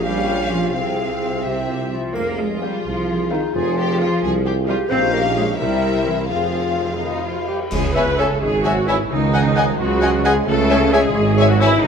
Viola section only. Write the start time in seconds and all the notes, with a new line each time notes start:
0.05 C#4 G4
0.75 C4 G#4
1.45 C4 G4
2.63 C4 G#4
3.32 C4 G#4
4.01 C4 G#4
4.67 C4 G#4
4.91 C#4 G4
5.59 C4 A#4
6.29 C4 G#4
7.01 D#4
7.25 F4
7.48 G4
7.72 G#4
7.94 B4
8.18 A4
8.41 G#4
8.64 F#4
8.88 E4
9.10 D#4
9.80 F#4
10.24 G#4
10.47 A4
10.92 G#4
11.49 F#4
11.61 E4
11.83 D#4